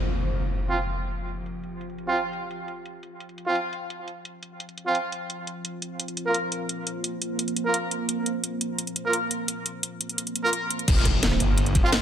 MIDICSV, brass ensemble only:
0, 0, Header, 1, 2, 480
1, 0, Start_track
1, 0, Key_signature, -4, "minor"
1, 0, Tempo, 348837
1, 1529, Time_signature, 4, 2, 24, 8
1, 16535, End_track
2, 0, Start_track
2, 0, Title_t, "Brass ensemble"
2, 0, Program_c, 0, 61
2, 929, Note_on_c, 0, 53, 72
2, 929, Note_on_c, 0, 60, 69
2, 929, Note_on_c, 0, 65, 82
2, 1070, Note_off_c, 0, 53, 0
2, 1070, Note_off_c, 0, 60, 0
2, 1070, Note_off_c, 0, 65, 0
2, 2849, Note_on_c, 0, 53, 74
2, 2849, Note_on_c, 0, 60, 70
2, 2849, Note_on_c, 0, 65, 84
2, 2990, Note_off_c, 0, 53, 0
2, 2990, Note_off_c, 0, 60, 0
2, 2990, Note_off_c, 0, 65, 0
2, 4769, Note_on_c, 0, 53, 76
2, 4769, Note_on_c, 0, 60, 70
2, 4769, Note_on_c, 0, 65, 86
2, 4910, Note_off_c, 0, 53, 0
2, 4910, Note_off_c, 0, 60, 0
2, 4910, Note_off_c, 0, 65, 0
2, 6689, Note_on_c, 0, 53, 76
2, 6689, Note_on_c, 0, 60, 72
2, 6690, Note_on_c, 0, 65, 83
2, 6830, Note_off_c, 0, 53, 0
2, 6830, Note_off_c, 0, 60, 0
2, 6830, Note_off_c, 0, 65, 0
2, 8609, Note_on_c, 0, 58, 76
2, 8609, Note_on_c, 0, 65, 69
2, 8609, Note_on_c, 0, 70, 82
2, 8750, Note_off_c, 0, 58, 0
2, 8750, Note_off_c, 0, 65, 0
2, 8750, Note_off_c, 0, 70, 0
2, 10529, Note_on_c, 0, 58, 76
2, 10529, Note_on_c, 0, 65, 72
2, 10529, Note_on_c, 0, 70, 87
2, 10670, Note_off_c, 0, 58, 0
2, 10670, Note_off_c, 0, 65, 0
2, 10670, Note_off_c, 0, 70, 0
2, 12449, Note_on_c, 0, 58, 77
2, 12449, Note_on_c, 0, 65, 70
2, 12449, Note_on_c, 0, 70, 86
2, 12590, Note_off_c, 0, 58, 0
2, 12590, Note_off_c, 0, 65, 0
2, 12590, Note_off_c, 0, 70, 0
2, 14369, Note_on_c, 0, 58, 96
2, 14369, Note_on_c, 0, 65, 90
2, 14369, Note_on_c, 0, 70, 108
2, 14457, Note_off_c, 0, 58, 0
2, 14457, Note_off_c, 0, 65, 0
2, 14457, Note_off_c, 0, 70, 0
2, 16289, Note_on_c, 0, 53, 100
2, 16289, Note_on_c, 0, 60, 91
2, 16289, Note_on_c, 0, 65, 113
2, 16377, Note_off_c, 0, 53, 0
2, 16377, Note_off_c, 0, 60, 0
2, 16377, Note_off_c, 0, 65, 0
2, 16535, End_track
0, 0, End_of_file